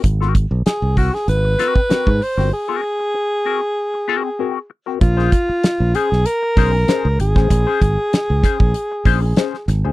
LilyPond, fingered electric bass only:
\new Staff \with { instrumentName = "Fingered electric bass" } { \clef bass \time 4/4 \key bes \minor \tempo 4 = 96 aes,,8. ces,16 r16 c,8 r16 aes,,8 r8. aes,16 r16 g,,16 | r1 | bes,,8 r8. bes,,16 r16 ces,16 r8 ces,8 r16 des,16 aes,,16 a,,16 | bes,,16 r16 aes,,16 r8 des,16 r16 bes,,16 r8 bes,,8 r8 aes,,16 d,16 | }